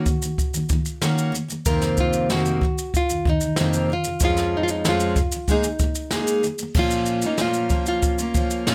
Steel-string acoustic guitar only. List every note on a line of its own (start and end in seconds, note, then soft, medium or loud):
0.06 0.21 D#3 soft
0.06 0.24 A#3 medium
0.22 0.48 D#3 soft
0.22 0.49 A#3 soft
0.54 0.68 D#3 soft
0.54 0.72 A#3 soft
0.69 0.95 D#3 medium
0.69 0.97 A#3 medium
1.01 1.31 D#3 medium
1.01 1.34 A#3 medium
1.01 1.34 C#4 medium
1.01 1.35 F#4 medium
1.32 1.47 D#3 medium
1.32 1.51 A#3 medium
1.48 1.65 D#3 soft
1.48 1.66 A#3 soft
1.66 2.29 F2 medium
1.66 2.30 C3 medium
1.66 2.30 D#3 medium
1.66 2.30 A#3 medium
1.66 2.32 C4 medium
1.66 2.34 F4 medium
2.30 2.60 F2 medium
2.30 2.62 C3 medium
2.30 2.62 D#3 medium
2.30 2.62 A#3 medium
2.30 2.63 C4 medium
2.61 2.87 F2 soft
2.61 2.88 C3 medium
2.61 2.89 D#3 medium
3.10 3.24 F2 soft
3.10 3.26 C3 soft
3.10 3.27 D#3 soft
3.25 3.41 F2 medium
3.25 3.42 C3 medium
3.25 3.43 D#3 medium
3.42 3.57 F2 soft
3.42 3.58 C3 soft
3.42 3.59 D#3 soft
3.59 3.89 F2 medium
3.59 3.90 C3 medium
3.59 3.90 D#3 medium
3.59 3.90 A#3 medium
3.59 3.91 C4 medium
3.59 3.91 F4 medium
3.90 4.04 F2 medium
3.90 4.06 C3 medium
3.90 4.07 D#3 medium
4.05 4.20 F2 soft
4.05 4.22 C3 soft
4.05 4.22 D#3 medium
4.21 4.83 F2 medium
4.21 4.85 F3 medium
4.21 4.85 G#3 medium
4.21 4.85 C#4 medium
4.21 4.86 F4 medium
4.85 5.15 F2 medium
4.85 5.17 F3 medium
4.85 5.17 G#3 medium
4.85 5.17 C#4 medium
4.85 5.17 F4 medium
5.17 5.32 F2 medium
5.17 5.33 C3 medium
5.17 5.34 F3 medium
5.33 5.49 F2 soft
5.33 5.49 C3 soft
5.33 5.49 F3 soft
5.49 5.63 G#3 medium
5.49 5.65 A#3 medium
5.49 5.65 D#4 medium
5.49 5.66 G#4 medium
5.64 5.79 G#3 soft
5.64 5.82 A#3 soft
5.80 6.06 G#3 soft
5.80 6.07 A#3 medium
6.12 6.42 G#3 medium
6.12 6.44 A#3 medium
6.12 6.45 D#4 medium
6.12 6.45 G#4 medium
6.44 6.58 G#3 medium
6.44 6.61 A#3 medium
6.59 6.76 G#3 soft
6.59 6.76 A#3 medium
6.75 7.23 A#2 medium
6.75 7.24 F3 medium
6.75 7.24 A#3 medium
6.75 7.24 C#4 medium
6.75 7.22 F4 medium
7.24 7.39 A#3 soft
7.24 7.39 C#4 soft
7.24 7.39 F4 medium
7.39 7.71 A#2 medium
7.39 7.70 F3 medium
7.39 7.71 A#3 medium
7.39 7.72 C#4 medium
7.39 7.72 F4 medium
7.71 8.19 F3 soft
7.71 8.19 A#3 medium
7.71 8.19 C#4 medium
7.71 8.17 F4 medium
8.19 8.34 A#3 soft
8.19 8.35 C#4 soft
8.19 8.35 F4 soft
8.34 8.66 F3 soft
8.34 8.67 A#3 medium
8.34 8.67 C#4 medium
8.34 8.68 F4 medium
8.67 8.75 A#2 medium
8.67 8.75 F3 medium
8.67 8.75 A#3 medium
8.67 8.75 C#4 medium
8.67 8.75 F4 medium